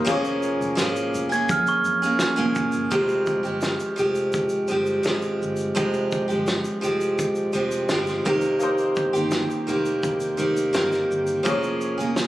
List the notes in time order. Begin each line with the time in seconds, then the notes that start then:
Already playing: A#4
0.05 F1 F3 A#3 C#4 F4 G#4, kick, shaker
0.09 G#4 C#5
0.24 shaker
0.43 shaker
0.60 F1, shaker
0.75 G#1 F3 A#3 C#4 G#4, snare, shaker
0.96 shaker
1.13 F1, shaker
1.29 A#3 C#4 G#4 G#6, shaker
1.49 F2 F6, kick, shaker
1.67 C#6, shaker
1.85 F2, shaker
2.02 A#3 C#4 G#4, shaker
2.19 snare, shaker
2.36 F1 F3 A#3 C#4 G#4, shaker
2.55 F1, kick, shaker
2.72 shaker
2.74 G1, shaker
2.90 F1 F2 C3 F3 G#3 C4 G4, kick, shaker
3.08 shaker
3.26 kick, shaker
3.43 G1 F3 G#3 C4 G4, shaker
3.61 snare, shaker
3.63 shaker
3.80 shaker
3.96 F1 F3 G#3 C4 G4, shaker
4.15 shaker
4.32 shaker
4.34 kick, shaker
4.49 shaker
4.68 F3 G#3, shaker
4.70 G1 C4 G4, shaker
4.86 shaker
5.03 G#1 F3 G#3 C4 G4, snare, shaker
5.07 shaker
5.22 shaker
5.42 G1, shaker
5.56 shaker
5.60 shaker
5.75 F1 F2 C3 F3 G#3 C4 G4, kick, shaker
5.94 shaker
6.11 kick, shaker
6.28 G1 F3 G#3 C4 G4, shaker
6.47 snare, shaker
6.48 shaker
6.65 shaker
6.81 F1 F3 G#3 C4 G4, shaker
7.01 shaker
7.19 kick, shaker
7.35 shaker
7.53 F1 F3 G#3 C4 G4, shaker
7.71 shaker
7.89 G1 F3 G#3 C4 G4, snare, shaker
8.06 snare, shaker
8.25 F1 F2 C3 D#3 A#3 C4 G4, kick, shaker
8.41 shaker
8.44 shaker
8.59 A#3 D#4, shaker
8.63 C5
8.78 shaker
8.95 kick, shaker
9.13 G1 D#3 A#3 C4 G4, shaker
9.31 snare, shaker
9.50 shaker
9.67 F1 D#3 A#3 C4 G4, shaker
9.86 shaker
10.03 kick, shaker
10.20 shaker
10.37 F1 D#3 A#3 C4 G4, shaker
10.57 shaker
10.73 G1 D#3 A#3 C4, snare, shaker
10.75 G4, shaker
10.92 snare, shaker
11.10 G1, shaker
11.27 shaker
11.43 F1 F3 A#3 C#4 G#4, kick, shaker
11.49 C#5
11.63 shaker
11.81 shaker
11.98 F1 A#3 C#4 G#4, shaker
12.16 snare, shaker